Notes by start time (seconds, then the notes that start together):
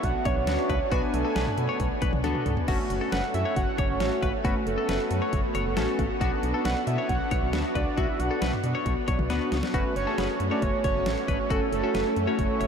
Already playing: B3 D4 F#4 C#5
0.03 B1 F#5, kick, closed hi-hat
0.25 B1 C#5, kick, closed hi-hat
0.37 B1
0.47 D2 B3 D4 F#4, snare, closed hi-hat
0.69 C#2 B4, kick, closed hi-hat, cowbell
0.92 B1 B3 D4 F#4 B4 G#5, kick, closed hi-hat
1.14 B1 A4, closed hi-hat
1.25 A4
1.36 B1 B4, snare, closed hi-hat
1.47 mid tom
1.58 B2, closed hi-hat
1.69 C#5
1.80 B1, kick, closed hi-hat
2.02 B1 B4, kick, closed hi-hat
2.13 B1, mid tom
2.24 D2 B3 D4 F#4 A4, closed hi-hat, high tom
2.35 mid tom
2.46 C#2, closed hi-hat, mid tom
2.57 floor tom
2.68 F#1 A3 C#4 F#4, kick, crash
2.90 F#1, closed hi-hat
3.01 A4
3.12 F#1 B4 F#5, snare, closed hi-hat
3.34 F#2 E5, closed hi-hat
3.45 C#5
3.56 F#1 F#5, kick, closed hi-hat
3.78 F#1 C#5, kick, closed hi-hat
3.89 F#1
4.00 A1 A3 C#4 F#4, snare, closed hi-hat
4.22 G#1 B4, kick, closed hi-hat, cowbell
4.45 F#1 A3 B3 C#4 F#4 B4, kick, closed hi-hat
4.67 F#1 A4, closed hi-hat
4.78 A4
4.89 F#1 B4, snare, closed hi-hat
5.11 F#2, closed hi-hat
5.22 C#5
5.33 F#1, kick, closed hi-hat
5.55 F#1 C#5, closed hi-hat
5.66 F#1
5.77 A1 A3 C#4 F#4 A4, snare, closed hi-hat
5.99 G#1, kick, closed hi-hat, cowbell
6.21 B1 B3 D4 F#4, kick, closed hi-hat
6.43 B1, closed hi-hat
6.54 A4
6.65 B1 B4 F#5, snare, closed hi-hat
6.87 B2 E5, closed hi-hat
6.98 C#5
7.09 B1 F#5, kick, closed hi-hat
7.31 B1 C#5, kick, closed hi-hat
7.42 B1
7.53 D2 B3 D4 F#4, snare, closed hi-hat
7.75 C#2 B4 D5, kick, closed hi-hat, cowbell
7.97 B1 B3 D4 F#4 E5, kick, closed hi-hat
8.20 B1 F#5, closed hi-hat
8.31 A4
8.42 B1 B4, snare, closed hi-hat
8.53 mid tom
8.64 B2, closed hi-hat
8.75 C#5
8.86 B1, kick, closed hi-hat
9.08 B1 C#5, kick, closed hi-hat
9.19 B1, mid tom
9.30 D2 B3 D4 F#4 B4, snare, closed hi-hat
9.52 C#2, snare, closed hi-hat
9.63 snare
9.74 F#1 A3 C#4 F#4 B4, kick, closed hi-hat
9.96 F#1 C#5, closed hi-hat
10.07 A3 C#4 G#4 A4
10.18 F#1 B4, snare, closed hi-hat
10.40 F#2, closed hi-hat
10.51 A3 C#4 F#4 C#5 D5
10.62 F#1 C#5, kick, closed hi-hat
10.84 F#1 C#5, kick, closed hi-hat
10.95 F#1
11.06 A1, snare, closed hi-hat
11.28 G#1 B4, kick, closed hi-hat
11.50 F#1 A3 C#4 E4 F#4 A4, kick, closed hi-hat
11.72 F#1 A4, closed hi-hat
11.83 A3 C#4 F#4 A4
11.94 F#1 B4, snare, closed hi-hat
12.16 F#2, closed hi-hat
12.28 A3 C#4 F#4 C#5
12.39 F#1 C#5, kick, closed hi-hat
12.61 F#1 C#5, closed hi-hat